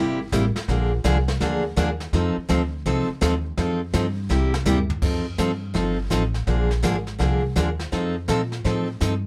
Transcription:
Already playing: upright bass G1, steel-string acoustic guitar C3 G3 A#3 E4 G4
0.32 upright bass A1, steel-string acoustic guitar C3 G3 A#3 E4 G4, kick, snare, hi-hat pedal
0.55 muted upright bass stroke, snare
0.68 upright bass A#1, steel-string acoustic guitar D3 F3 A#3 D4 G#4, brush sweep, kick, snare
1.04 upright bass C2, steel-string acoustic guitar D3 F3 A#3 D4 G#4, kick, snare, hi-hat pedal
1.28 snare
1.40 upright bass D2, steel-string acoustic guitar D3 F3 A#3 D4 G#4, brush sweep, kick, snare
1.76 upright bass D#2, steel-string acoustic guitar D3 F3 A#3 D4 G#4, kick, snare, hi-hat pedal
2.00 snare
2.13 upright bass F2, steel-string acoustic guitar F3 C4 D#4 A4, brush sweep, kick, snare
2.37 muted upright bass stroke
2.49 upright bass D2, steel-string acoustic guitar F3 C4 D#4 A4, kick, snare, hi-hat pedal
2.86 upright bass C2, steel-string acoustic guitar F3 C4 D#4 A4, brush sweep, kick, snare
3.09 muted upright bass stroke
3.21 upright bass D#2, steel-string acoustic guitar F3 C4 D#4 A4, kick, snare, hi-hat pedal
3.57 upright bass F2, steel-string acoustic guitar F3 C4 D#4 A4, brush sweep, kick, snare
3.94 upright bass G2, steel-string acoustic guitar F3 C4 D#4 A4, kick, snare, hi-hat pedal
4.29 upright bass C2, steel-string acoustic guitar C3 G3 A#3 E4 G4, snare
4.54 snare
4.66 upright bass D2, steel-string acoustic guitar C3 G3 A#3 E4 G4, floor tom, hi-hat pedal
4.90 floor tom
5.02 upright bass F2, steel-string acoustic guitar F3 C4 D#4 A4, brush sweep, kick, snare, crash
5.38 upright bass G2, steel-string acoustic guitar F3 C4 D#4 A4, kick, snare, hi-hat pedal
5.74 upright bass G1, steel-string acoustic guitar F3 C4 D#4 A4, brush sweep, kick, snare
6.10 upright bass A1, steel-string acoustic guitar F3 C4 D#4 A4, kick, snare, hi-hat pedal
6.34 snare
6.47 upright bass A#1, steel-string acoustic guitar D3 F3 A#3 D4 G#4, brush sweep, kick, snare
6.71 snare
6.83 upright bass G#1, steel-string acoustic guitar D3 F3 A#3 D4 G#4, kick, snare, hi-hat pedal
7.07 snare
7.19 upright bass C2, steel-string acoustic guitar D3 F3 A#3 D4 G#4, brush sweep, kick, snare
7.56 upright bass D#2, steel-string acoustic guitar D3 F3 A#3 D4 G#4, kick, snare, hi-hat pedal
7.79 snare
7.92 upright bass F2, steel-string acoustic guitar F3 C4 D#4 A4, brush sweep, kick, snare
8.28 upright bass A#2, steel-string acoustic guitar F3 C4 D#4 A4, kick, snare, hi-hat pedal
8.52 snare
8.64 upright bass A2, steel-string acoustic guitar F3 C4 D#4 A4, brush sweep, kick, snare
9.01 upright bass G2, steel-string acoustic guitar F3 C4 D#4 A4, kick, snare, hi-hat pedal

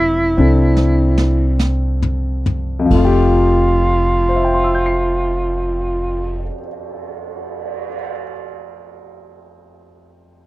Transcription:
Already playing: upright bass E1, grand piano F3 A3 C4 E4 G4, tenor saxophone E4
0.37 upright bass C2, grand piano C4 D4 A4
0.77 snare
1.18 snare
1.59 snare, hi-hat pedal
2.02 floor tom
2.46 floor tom
2.79 grand piano F2
2.86 grand piano F3
2.91 upright bass F1, grand piano A3, tenor saxophone F4, kick, ride
2.98 grand piano F4
3.05 grand piano G4
3.80 cymbal swell
4.29 grand piano C5
4.36 grand piano E5
4.45 grand piano G5
4.54 grand piano C6
4.64 grand piano E6
4.75 grand piano G6
4.86 grand piano C7

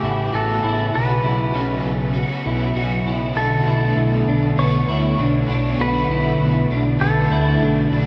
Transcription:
Already playing: analog synth pad C#3 A3 B3, overdriven electric guitar A3 C#4 E4 B4, electric slide guitar G4
0.03 analog synth bass A1, clean electric guitar E4
0.33 analog synth bass A1, overdriven electric guitar A3 C#4 E4 B4, clean electric guitar F#4, electric slide guitar A4
0.63 analog synth bass A1, clean electric guitar E4
0.93 analog synth bass B1, overdriven electric guitar B2 B3 C#4 F#4 B4, analog synth pad F#3, clean electric guitar F#4, electric slide guitar B4
1.23 analog synth bass B1, clean electric guitar E4
1.53 analog synth bass B1, overdriven electric guitar B3 C#4 F#4, clean electric guitar C#4
1.57 overdriven electric guitar B4
1.85 analog synth bass B1
2.13 overdriven electric guitar B3 C#4 F#4, clean electric guitar F#4
2.18 overdriven electric guitar B4
2.45 analog synth bass B1, clean electric guitar E4
2.74 analog synth bass B1, overdriven electric guitar B3 C#4 F#4, clean electric guitar F#4
2.78 overdriven electric guitar B4
3.05 analog synth bass B1, clean electric guitar E4
3.33 analog synth bass B1, overdriven electric guitar B2 A3 D4, analog synth pad A3, clean electric guitar F#4, electric slide guitar A4
3.37 analog synth pad D3 B3, overdriven electric guitar F#4 B4
3.66 analog synth bass B1, clean electric guitar E4
3.96 analog synth bass B1
4.28 analog synth bass B1, clean electric guitar D4
4.56 analog synth bass B1, overdriven electric guitar A3 D4 F#4 B4, clean electric guitar B3, electric slide guitar C#5
4.88 analog synth bass D2, clean electric guitar E4
5.18 analog synth bass B1, clean electric guitar D4
5.47 analog synth bass B1, clean electric guitar D4, overdriven electric guitar F#4 B4
5.51 overdriven electric guitar D4
5.76 analog synth bass B1, overdriven electric guitar B2 A3, clean electric guitar F#4
5.81 overdriven electric guitar D4 F#4 B4, electric slide guitar B4
6.09 analog synth bass B1, clean electric guitar E4
6.40 analog synth bass B1
6.71 analog synth bass B1, clean electric guitar D4
6.99 analog synth bass B1, overdriven electric guitar A3 D4 F#4 B4, clean electric guitar B3, electric slide guitar A4
7.31 analog synth bass D2, clean electric guitar E4
7.61 analog synth bass B1, clean electric guitar D4
7.90 analog synth bass B1, clean electric guitar D4, overdriven electric guitar F#4 B4
7.94 overdriven electric guitar D4

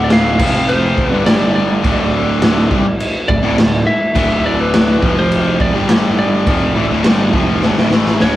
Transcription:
Already playing: picked electric bass D1, distorted electric guitar D2 A2 D3, tonewheel organ A3 D4 F#4
0.04 lead electric guitar D5
0.10 lead electric guitar F5, snare, crash
0.39 picked electric bass F1, distorted electric guitar F2 C3 F3, tonewheel organ F3 C4 F4, kick, crash
0.69 lead electric guitar C5, crash
0.98 kick
1.08 distorted electric guitar G2, lead electric guitar B4
1.12 picked electric bass G1, distorted electric guitar D3 G3, tonewheel organ G3 D4 G4
1.26 lead electric guitar D5, snare, crash
1.55 lead electric guitar D5
1.83 picked electric bass D1, distorted electric guitar D2 A2 D3, tonewheel organ A3 F#4, kick, crash
2.42 snare, crash
2.70 picked electric bass C2, distorted electric guitar C3 G3, kick
2.85 muted distorted electric guitar stroke, muted overdriven electric guitar stroke, muted picked electric bass stroke
3.00 crash
3.28 picked electric bass D1, distorted electric guitar D2 A2, lead electric guitar D5, kick
3.43 picked electric bass D1, distorted electric guitar D2 A2
3.58 picked electric bass D1, distorted electric guitar D2 A2, snare, crash
3.87 lead electric guitar E5
4.15 picked electric bass D1, distorted electric guitar D2 A2 D3, kick, crash
4.46 lead electric guitar D5
4.60 lead electric guitar B4
4.74 snare, crash
5.02 picked electric bass F1, distorted electric guitar F2 C3 F3, tonewheel organ F3 C4 F4, kick
5.19 lead electric guitar C5
5.32 crash
5.60 lead electric guitar D5, kick
5.74 picked electric bass G1, distorted electric guitar G2 D3 G3, tonewheel organ G3 D4 G4
5.89 snare, crash
6.19 lead electric guitar D5
6.47 picked electric bass F1, distorted electric guitar F2 C3 F3, tonewheel organ A3 F#4, kick, crash
6.75 picked electric bass A1, distorted electric guitar A2 E3
6.90 picked electric bass D1, distorted electric guitar D2 A2
7.04 picked electric bass G1, distorted electric guitar G2 D3 G3, snare, crash
7.33 picked electric bass F1, distorted electric guitar F2 C3 F3, kick
7.62 picked electric bass G1, distorted electric guitar G2 D3, snare
7.77 picked electric bass D1, distorted electric guitar D2 A2, snare
7.91 picked electric bass A1, distorted electric guitar A2 E3 A3, snare
8.06 snare
8.20 picked electric bass D1, distorted electric guitar D2 A2 D3, lead electric guitar C#5, snare

